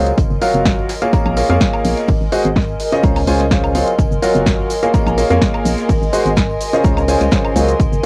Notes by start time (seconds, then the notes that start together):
Already playing: C#2 A#4 D#5 G#5 C6
0.07 closed hi-hat, tambourine
0.18 F#1 A#4, kick, closed hi-hat, tambourine
0.30 F#1, tambourine
0.42 F#3 F4 F#4 A#4 C#5 F5, closed hi-hat, open hi-hat, tambourine
0.54 F#1, closed hi-hat, tambourine, high conga
0.65 kick, snare, closed hi-hat, tambourine
0.79 tambourine
0.89 snare, closed hi-hat, open hi-hat, tambourine
0.96 D#5
1.02 A#3 F4 G#4 A#4 C#5 F5, closed hi-hat, tambourine
1.06 C6
1.13 A#3 F4 G#4 A#4 C#5 A#5, kick, closed hi-hat, tambourine
1.25 A#1, tambourine, high conga, high woodblock
1.34 A#3 F4 G#4 A#4 C#5 F5 G#5, closed hi-hat, open hi-hat, tambourine
1.49 F2 A#3 F4 G#4 A#4 C#5 F5, closed hi-hat, tambourine
1.60 kick, snare, closed hi-hat, tambourine
1.73 tambourine, high woodblock
1.84 A#1, closed hi-hat, open hi-hat, tambourine, high conga
1.97 snare, closed hi-hat, tambourine
2.08 G#1, kick, closed hi-hat, open hi-hat, tambourine
2.20 G#1, tambourine
2.32 G#3 F#4 G#4 C5 D#5 F#5, closed hi-hat, open hi-hat, tambourine
2.45 G#1, closed hi-hat, tambourine, high conga
2.55 kick, snare, closed hi-hat, tambourine
2.68 tambourine
2.80 closed hi-hat, open hi-hat, tambourine
2.92 C#3 F4 G#4 C5 C#5 D#5, snare, closed hi-hat, tambourine
3.03 C#2 C#3 F4 C5 C#5 A#5, kick, closed hi-hat, tambourine
3.16 open hi-hat, tambourine, high conga, high woodblock
3.27 C#2 C#3 F4 G#4 C5 C#5 G#5, closed hi-hat, open hi-hat, tambourine
3.39 snare, closed hi-hat, tambourine
3.51 C#3 F4 G#4 C5 C#5 F5, kick, snare, closed hi-hat, tambourine
3.64 tambourine, high woodblock
3.75 F#3 F4 G#4 C5 C#5 F5, closed hi-hat, open hi-hat, tambourine, high conga
3.88 closed hi-hat, tambourine
3.98 F#1, kick, closed hi-hat, tambourine, shaker
4.11 F#1, tambourine, shaker
4.22 F#3 F4 F#4 A#4 C#5 F5, closed hi-hat, open hi-hat, tambourine, shaker
4.34 F#1, closed hi-hat, tambourine, high conga, shaker
4.46 kick, snare, closed hi-hat, tambourine, shaker
4.59 tambourine
4.70 closed hi-hat, open hi-hat, tambourine, shaker
4.83 A#3 F4 G#4 A#4 C#5 F5, closed hi-hat, tambourine, shaker
4.93 A#3 F4 G#4 A#4 C#5 A#5, kick, closed hi-hat, tambourine, shaker
5.06 A#1, tambourine, high conga, high woodblock, shaker
5.18 A#3 F4 G#4 A#4 C#5 F5, closed hi-hat, open hi-hat, tambourine, shaker
5.30 F2 A#3 F4 G#4 A#4 C#5 F5, closed hi-hat, tambourine, shaker
5.42 kick, snare, closed hi-hat, tambourine, shaker
5.54 tambourine, high woodblock
5.65 A#1, closed hi-hat, open hi-hat, tambourine, high conga, shaker
5.78 snare, closed hi-hat, tambourine, shaker
5.89 G#1, kick, closed hi-hat, open hi-hat, tambourine, shaker
6.02 G#1, tambourine, shaker
6.12 G#3 F#4 G#4 C5 D#5 F#5, closed hi-hat, open hi-hat, tambourine, shaker
6.25 G#1, closed hi-hat, tambourine, high conga, shaker
6.36 kick, snare, closed hi-hat, tambourine, shaker
6.49 tambourine
6.61 closed hi-hat, open hi-hat, tambourine, shaker
6.73 C#3 F4 G#4 C5 C#5 D#5, snare, closed hi-hat, tambourine, shaker
6.84 C#2 C#3 F4 G#4 C5 C#5 A#5, kick, closed hi-hat, tambourine, shaker
6.97 tambourine, high conga, high woodblock, shaker
7.08 C#3 F4 G#4 C5 C#5 G#5, closed hi-hat, open hi-hat, tambourine, shaker
7.21 C#2, snare, closed hi-hat, tambourine, shaker
7.31 C#3 F4 G#4 C5 C#5 F5, kick, snare, closed hi-hat, tambourine, shaker
7.45 tambourine, high woodblock
7.56 C#2 F#3 F4 G#4 C5 C#5 F5, closed hi-hat, open hi-hat, tambourine, high conga, shaker
7.68 closed hi-hat, shaker
7.80 F#1, kick, closed hi-hat, tambourine, shaker
7.92 F#1, tambourine, shaker